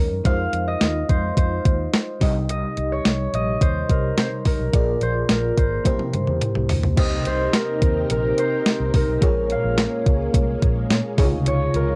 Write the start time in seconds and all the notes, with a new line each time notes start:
Already playing: D#3 G#3 C#4 D#4 A#4 C5
0.11 F#2
0.24 F2 G#3 D#4 F4 C5 F5, kick, closed hi-hat
0.53 F2, closed hi-hat
0.68 D#5
0.81 D#2, snare, closed hi-hat
1.09 F2 C5, kick, closed hi-hat
1.37 F2 C5, kick, closed hi-hat
1.65 D#2, kick, closed hi-hat
1.93 snare, closed hi-hat
2.20 C2 C3 G3 D#4 G4 D#5, kick, open hi-hat
2.49 D#5, closed hi-hat
2.77 C2, closed hi-hat
2.92 C#5
3.05 C2, snare, closed hi-hat
3.33 A#1 D#5, closed hi-hat
3.61 D#2 C5, kick, closed hi-hat
3.89 C2 A#4, kick, closed hi-hat
4.17 C3 C5, snare, closed hi-hat
4.45 C2 A#4, kick, open hi-hat
4.59 B1
4.73 A#1 A#2 A#3 F4 G#4 D5, kick, closed hi-hat
5.01 A#1 C5, closed hi-hat
5.29 A#1 A#4, snare, closed hi-hat
5.58 G#1 C5, kick, closed hi-hat
5.84 C2 C3 A#3 E4 G4 C5, kick, closed hi-hat, high tom
6.00 C3, high tom
6.14 G2, closed hi-hat, mid tom
6.28 E2, mid tom
6.42 closed hi-hat, mid tom
6.55 C2, mid tom
6.69 D2, floor tom, open hi-hat
6.84 C#2, floor tom
6.97 C2 C3 A#3 C4 D#4 G4 A#4 C5 D#5, kick, closed hi-hat, crash
7.25 C2 C5, closed hi-hat
7.53 A#4, snare, closed hi-hat
7.82 D#2, kick, closed hi-hat
8.10 A#1 A#4, closed hi-hat
8.38 C5, closed hi-hat
8.66 snare, closed hi-hat
8.80 C2
8.94 C2 A#4, kick, open hi-hat
9.08 B1
9.21 A#1 A#2 G#3 A#3 C#4 F4 G#4 C#5, kick, closed hi-hat
9.50 F5, closed hi-hat
9.64 A#1
9.78 snare, closed hi-hat
10.06 C#2, kick, closed hi-hat
10.34 C2, kick, closed hi-hat
10.62 A#1, kick, closed hi-hat
10.90 A#2, snare, closed hi-hat
11.17 C#2 C3 C#3 F3 D#4 F4 G#4 C#5, kick, open hi-hat
11.24 F4
11.32 D2
11.46 C#2 C#5, closed hi-hat
11.74 C#2 A#4, closed hi-hat